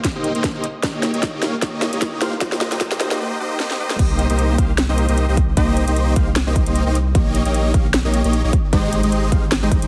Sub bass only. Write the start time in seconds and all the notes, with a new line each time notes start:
3.99 C2
4.30 C2
4.58 C2
4.89 C2
5.09 C2
5.28 C2
5.57 C2
5.88 C2
6.16 C2
6.47 C2
6.67 C2
6.86 C2
7.15 A#1
7.45 A#1
7.74 A#1
8.05 A#1
8.24 A#1
8.44 A#1
8.73 G#1
9.03 G#1
9.32 G#1
9.63 G#1
9.71 G#1
9.82 G#1